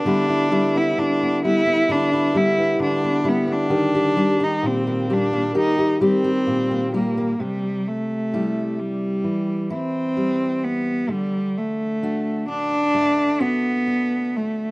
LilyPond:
<<
  \new Staff \with { instrumentName = "Cello" } { \time 4/4 \key c \lydian \tempo 4 = 65 d'8. e'16 d'8 e'8 d'8 e'8 d'8 b16 d'16~ | d'8. ees'16 c'8 d'8 ees'8 c'4 bes8 | g8 a4 g4 c'4 b8 | g8 a4 d'4 b4 a8 | }
  \new Staff \with { instrumentName = "Steel-string acoustic guitar" } { \time 4/4 \key c \lydian << { <g b e'>16 e'16 e'16 b8 b16 b16 b16 e'16 e'16 b16 b8 b16 e'16 b16 | g'16 g'16 g'16 g'8 bes16 g'16 bes16 g'16 g'16 g'16 g'8 bes16 g'16 bes16 | r4 <g e' g'>4. e'8 g4 | r4 <d' fis'>4. fis'8 d'4 | } \\ { d8 g8 d8 g8 d8 g8 d8 g8 | ees8 g8 bes,8 g8 ees8 g8 bes,8 g8 | c2 e2 | d2 a2 | } >> }
>>